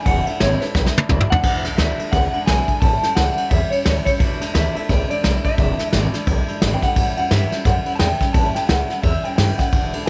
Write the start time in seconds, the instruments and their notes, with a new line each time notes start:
0.05 upright bass E1, steel-string acoustic guitar E2 B2 E3 G#3 D4 E4, clean electric guitar F#5, kick, ride
0.26 steel-string acoustic guitar E3 G#3 D4 E4, clean electric guitar E5, muted upright bass stroke, ride
0.40 upright bass G#1, steel-string acoustic guitar E2 B2 E3 G#3 D4 E4, clean electric guitar C#5, snare, ride
0.61 steel-string acoustic guitar E3 G#3 D4 E4, clean electric guitar B4, snare, ride
0.75 upright bass B1, steel-string acoustic guitar E3 G#3 D4 E4, kick, snare
0.86 snare
0.96 steel-string acoustic guitar E3 G#3 D4 E4, muted upright bass stroke, high tom
1.09 upright bass D2, steel-string acoustic guitar E2 B2 E3 G#3 D4 E4, kick, mid tom
1.20 mid tom
1.29 steel-string acoustic guitar E3 G#3 D4 E4, clean electric guitar F#5, floor tom
1.43 upright bass E1, steel-string acoustic guitar E2 B2 E3 G#3 D4 E4, kick, crash
1.64 upright bass B1, steel-string acoustic guitar E3 G#3 D4 E4, snare, ride
1.77 upright bass D2, steel-string acoustic guitar E2 B2 E3 G#3 D4 E4, clean electric guitar E5, snare, ride
1.98 steel-string acoustic guitar E3 G#3 D4 E4, muted upright bass stroke, ride
2.12 upright bass C#2, steel-string acoustic guitar E3 G#3 D4 E4, clean electric guitar F#5, kick, snare, ride
2.33 steel-string acoustic guitar E3 G#3 D4 E4, muted upright bass stroke, ride
2.46 upright bass B1, steel-string acoustic guitar E2 B2 E3 G#3 D4 E4, clean electric guitar G#5, snare, ride
2.67 steel-string acoustic guitar E3 G#3 D4 E4, kick, ride
2.81 upright bass A1, steel-string acoustic guitar A2 E3 G3 C#4 E4, clean electric guitar A5, kick, ride
3.02 steel-string acoustic guitar G3 C#4 E4, muted upright bass stroke, snare, ride
3.15 upright bass C#2, steel-string acoustic guitar A2 E3 G3 C#4 E4, clean electric guitar F#5, snare, ride
3.36 steel-string acoustic guitar G3 C#4 E4, muted upright bass stroke, ride
3.50 upright bass E2, steel-string acoustic guitar E3 G3 C#4 E4, clean electric guitar E5, kick, ride
3.70 steel-string acoustic guitar G3 C#4 E4, clean electric guitar C#5, muted upright bass stroke, ride
3.84 upright bass D2, steel-string acoustic guitar A2 E3 G3 C#4 E4, snare, ride
4.04 steel-string acoustic guitar G3 C#4 E4, clean electric guitar C#5, muted upright bass stroke, kick, snare, ride
4.18 upright bass E1, steel-string acoustic guitar E2 B2 E3 G#3 D4 E4, clean electric guitar E5, kick, ride
4.40 upright bass B1, steel-string acoustic guitar E3 G#3 D4 E4, snare, ride
4.53 upright bass D2, steel-string acoustic guitar E2 B2 E3 G#3 D4 E4, clean electric guitar E5, snare, ride
4.74 steel-string acoustic guitar E3 G#3 D4 E4, clean electric guitar E5, muted upright bass stroke, ride
4.88 upright bass C#2, steel-string acoustic guitar E3 G#3 D4 E4, clean electric guitar D5, kick, snare, ride
5.09 steel-string acoustic guitar E3 G#3 D4 E4, clean electric guitar D5, muted upright bass stroke, ride
5.23 upright bass B1, steel-string acoustic guitar E2 B2 E3 G#3 D4 E4, snare, ride
5.43 steel-string acoustic guitar E3 G#3 D4 E4, clean electric guitar E5, muted upright bass stroke, kick, ride
5.58 upright bass E1, steel-string acoustic guitar E2 B2 E3 G#3 D4 E4, kick, ride
5.78 steel-string acoustic guitar E3 G#3 D4 E4, muted upright bass stroke, snare, ride
5.92 upright bass G#1, steel-string acoustic guitar E2 B2 E3 G#3 D4 E4, clean electric guitar D5, snare, ride
6.13 steel-string acoustic guitar E3 G#3 D4 E4, muted upright bass stroke, snare, ride
6.26 upright bass B1, steel-string acoustic guitar E3 G#3 D4 E4, kick, ride
6.48 steel-string acoustic guitar E3 G#3 D4 E4, muted upright bass stroke, ride
6.61 upright bass G#1, steel-string acoustic guitar E2 B2 E3 G#3 D4 E4, snare, ride
6.74 clean electric guitar G5
6.82 steel-string acoustic guitar E3 G#3 D4 E4, clean electric guitar F#5, muted upright bass stroke, kick, snare, ride
6.96 upright bass A1, steel-string acoustic guitar A2 E3 G3 C#4 E4, kick, ride
7.16 upright bass E2, steel-string acoustic guitar G3 C#4 E4, clean electric guitar F#5, ride
7.31 upright bass G2, steel-string acoustic guitar A2 E3 G3 C#4 E4, clean electric guitar E5, snare, ride
7.51 steel-string acoustic guitar G3 C#4 E4, muted upright bass stroke, snare, ride
7.65 upright bass F#2, steel-string acoustic guitar E3 G3 C#4 E4, clean electric guitar F#5, kick, snare, ride
7.86 steel-string acoustic guitar G3 C#4 E4, muted upright bass stroke, ride
7.96 clean electric guitar G5 A5, snare, ride
8.00 upright bass E2, steel-string acoustic guitar A2 E3 G3 C#4 E4
8.21 steel-string acoustic guitar G3 C#4 E4, muted upright bass stroke, kick, snare, ride
8.33 upright bass A1, steel-string acoustic guitar A2 E3 G3 C#4 E4, clean electric guitar A5, kick, ride
8.55 steel-string acoustic guitar G3 C#4 E4, clean electric guitar G5, muted upright bass stroke, snare, ride
8.68 upright bass C#2, steel-string acoustic guitar A2 E3 G3 C#4 E4, clean electric guitar F#5, snare, ride
8.89 steel-string acoustic guitar G3 C#4 E4, snare, ride
9.03 upright bass E2, steel-string acoustic guitar E3 G3 C#4 E4, clean electric guitar E5, kick, ride
9.23 steel-string acoustic guitar G3 C#4 E4, clean electric guitar G5, muted upright bass stroke, ride
9.36 upright bass G2, steel-string acoustic guitar A2 E3 G3 C#4 E4, clean electric guitar G5, snare, ride
9.57 steel-string acoustic guitar G3 C#4 E4, clean electric guitar F#5, kick, snare, ride
9.73 upright bass E1, steel-string acoustic guitar E2 B2 E3 G#3 D4 E4, kick, ride
9.93 upright bass B1, steel-string acoustic guitar E3 G#3 D4 E4, ride
10.06 clean electric guitar G#5